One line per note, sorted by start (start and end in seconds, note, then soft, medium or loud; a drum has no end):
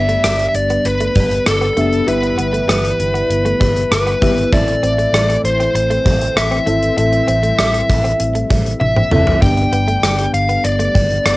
0.00 0.15 G1 medium
0.00 0.51 G2 medium
0.00 2.05 D3 medium
0.00 4.49 G3 medium
0.00 0.52 B3 medium
0.00 4.49 B3 medium
0.00 0.52 D4 medium
0.00 0.52 G4 medium
0.00 0.52 D5 medium
0.00 0.47 E5 medium
0.09 0.19 A3 medium
0.09 closed hi-hat soft
0.24 0.46 G1 medium
0.24 0.35 G3 medium
0.24 cross-stick loud
0.24 closed hi-hat medium
0.39 muted clean electric guitar stroke soft
0.39 closed hi-hat soft
0.48 0.55 E5 medium
0.54 0.76 G1 medium
0.54 0.87 D5 medium
0.54 closed hi-hat medium
0.70 0.81 B3 medium
0.70 closed hi-hat soft
0.85 1.07 G1 medium
0.85 1.47 B4 medium
0.85 muted clean electric guitar stroke soft
0.85 closed hi-hat medium
1.00 1.11 A3 medium
1.00 closed hi-hat soft
1.15 1.38 G1 medium
1.15 1.26 G3 medium
1.15 kick medium
1.15 closed hi-hat medium
1.31 closed hi-hat soft
1.46 1.69 G1 medium
1.46 2.08 A4 medium
1.46 muted clean electric guitar stroke soft
1.46 cross-stick loud
1.46 closed hi-hat medium
1.61 1.72 B3 medium
1.61 closed hi-hat soft
1.77 1.99 F#1 medium
1.77 1.88 A3 medium
1.77 1.99 B3 medium
1.77 1.99 D4 medium
1.77 2.00 G4 medium
1.77 2.00 E5 medium
1.77 closed hi-hat medium
1.93 closed hi-hat soft
2.07 2.30 G1 loud
2.07 2.96 G2 medium
2.07 9.38 E3 medium
2.07 2.97 B3 medium
2.07 2.97 E4 medium
2.07 2.97 G4 medium
2.07 3.91 B4 medium
2.07 2.97 E5 medium
2.07 closed hi-hat medium
2.23 muted clean electric guitar stroke soft
2.23 closed hi-hat soft
2.38 2.60 G1 medium
2.38 2.49 B3 medium
2.38 closed hi-hat medium
2.53 2.64 A3 medium
2.53 closed hi-hat soft
2.68 2.91 G1 medium
2.68 2.79 G3 medium
2.68 cross-stick loud
2.68 closed hi-hat medium
2.84 muted clean electric guitar stroke soft
2.84 closed hi-hat soft
2.99 3.21 G1 medium
2.99 closed hi-hat medium
3.14 3.25 B3 medium
3.14 closed hi-hat soft
3.30 3.52 G1 medium
3.30 muted clean electric guitar stroke soft
3.30 closed hi-hat medium
3.45 3.56 A3 medium
3.45 closed hi-hat medium
3.60 3.83 G1 medium
3.60 3.71 G3 medium
3.60 kick medium
3.60 closed hi-hat medium
3.76 closed hi-hat soft
3.91 4.13 G1 medium
3.91 4.55 B4 medium
3.91 muted clean electric guitar stroke soft
3.91 cross-stick loud
3.91 closed hi-hat medium
4.07 4.17 B3 medium
4.07 closed hi-hat soft
4.21 4.44 G#1 medium
4.21 4.33 G3 medium
4.21 4.44 B3 medium
4.21 4.44 E4 medium
4.21 4.44 G4 medium
4.21 4.44 E5 medium
4.21 kick medium
4.21 closed hi-hat medium
4.38 closed hi-hat soft
4.52 4.75 A1 loud
4.52 5.40 A2 medium
4.52 6.95 A3 medium
4.52 5.41 C4 medium
4.52 9.39 C4 medium
4.52 5.41 E4 medium
4.52 5.42 A4 medium
4.52 5.41 D5 medium
4.52 5.42 E5 medium
4.52 kick loud
4.52 closed hi-hat medium
4.68 muted clean electric guitar stroke soft
4.68 closed hi-hat soft
4.83 5.05 A1 medium
4.83 4.94 C4 medium
4.83 closed hi-hat medium
4.98 5.09 A3 medium
4.98 closed hi-hat soft
5.13 5.35 A1 medium
5.13 5.24 G3 medium
5.13 cross-stick loud
5.13 closed hi-hat medium
5.29 muted clean electric guitar stroke soft
5.29 closed hi-hat medium
5.44 5.66 A1 medium
5.44 5.74 C5 medium
5.44 closed hi-hat medium
5.60 5.71 C4 medium
5.60 closed hi-hat soft
5.75 5.97 A1 medium
5.75 6.38 C5 medium
5.75 muted clean electric guitar stroke soft
5.75 closed hi-hat medium
5.90 6.01 A3 medium
5.90 closed hi-hat medium
6.06 6.28 A1 medium
6.06 6.16 G3 medium
6.06 kick medium
6.06 closed hi-hat medium
6.21 closed hi-hat soft
6.36 6.58 A1 medium
6.36 6.96 E5 medium
6.36 muted clean electric guitar stroke soft
6.36 cross-stick loud
6.36 closed hi-hat medium
6.51 6.62 C4 medium
6.51 closed hi-hat soft
6.66 6.89 G#1 medium
6.66 6.77 A3 medium
6.66 6.89 C4 medium
6.66 6.89 E4 medium
6.66 6.89 A4 medium
6.66 6.90 E5 medium
6.66 closed hi-hat medium
6.83 closed hi-hat soft
6.97 7.19 A1 loud
6.97 7.86 A2 medium
6.97 11.37 G3 medium
6.97 7.86 C4 medium
6.97 7.87 E4 medium
6.97 7.87 A4 medium
6.97 8.79 E5 medium
6.97 7.87 E5 medium
6.97 closed hi-hat medium
7.12 muted clean electric guitar stroke soft
7.12 closed hi-hat soft
7.28 7.50 A1 medium
7.28 7.38 C4 medium
7.28 closed hi-hat medium
7.43 7.54 A3 medium
7.43 closed hi-hat soft
7.58 7.81 A1 medium
7.58 7.69 G3 medium
7.58 cross-stick loud
7.58 closed hi-hat medium
7.74 muted clean electric guitar stroke soft
7.74 closed hi-hat soft
7.89 8.11 A1 medium
7.89 kick medium
7.89 closed hi-hat medium
8.04 8.15 C4 medium
8.04 closed hi-hat soft
8.20 8.42 A1 medium
8.20 muted clean electric guitar stroke soft
8.20 closed hi-hat medium
8.35 8.46 A3 medium
8.35 closed hi-hat medium
8.50 8.72 A1 medium
8.50 8.61 G3 medium
8.50 kick medium
8.50 closed hi-hat medium
8.66 closed hi-hat soft
8.80 9.03 A1 medium
8.80 9.42 E5 medium
8.80 muted clean electric guitar stroke soft
8.80 high tom medium
8.96 9.07 C4 medium
8.96 mid tom medium
9.11 9.34 F#1 medium
9.11 9.22 A3 medium
9.11 9.34 C4 medium
9.11 9.34 E4 medium
9.11 9.34 A4 medium
9.11 9.34 E5 medium
9.11 mid tom medium
9.27 floor tom medium
9.41 9.64 G1 loud
9.41 10.30 G2 medium
9.41 11.37 D3 medium
9.41 10.31 B3 medium
9.41 11.37 B3 medium
9.41 10.31 D4 medium
9.41 10.31 G4 medium
9.41 10.31 D5 medium
9.41 10.34 G5 medium
9.41 kick loud
9.41 closed hi-hat medium
9.57 muted clean electric guitar stroke soft
9.57 closed hi-hat soft
9.73 9.95 G1 medium
9.73 9.84 B3 medium
9.73 closed hi-hat medium
9.88 9.99 A3 medium
9.88 closed hi-hat soft
10.03 10.25 G1 medium
10.03 10.14 G3 medium
10.03 cross-stick loud
10.03 closed hi-hat medium
10.19 muted clean electric guitar stroke soft
10.19 closed hi-hat medium
10.34 10.56 G1 medium
10.34 10.66 F5 medium
10.34 closed hi-hat medium
10.49 10.60 B3 medium
10.49 closed hi-hat soft
10.64 10.87 G1 medium
10.64 11.25 D5 medium
10.64 muted clean electric guitar stroke soft
10.64 closed hi-hat medium
10.79 10.90 A3 medium
10.79 closed hi-hat medium
10.95 11.17 G1 medium
10.95 11.06 G3 medium
10.95 kick medium
10.95 closed hi-hat medium
11.11 closed hi-hat soft
11.25 11.37 G1 medium
11.25 11.37 D5 medium
11.25 muted clean electric guitar stroke soft
11.25 cross-stick loud
11.25 closed hi-hat medium